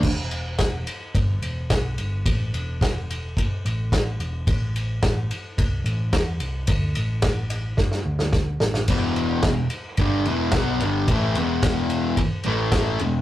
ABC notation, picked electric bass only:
X:1
M:4/4
L:1/8
Q:1/4=109
K:A
V:1 name="Picked electric bass" clef=bass
E,,,2 E,,, z =G,,, E,,, B,,, G,,, | A,,, E,,,3 z A,,,2 E,,, | A,,,2 A,,, z =C,, A,,, E,, C,, | D,, A,,,3 z D,,2 A,,, |
z2 E,,, z =G,,, E,,, B,,, G,,, | A,,, E,,,3 z A,,,2 E,,, |]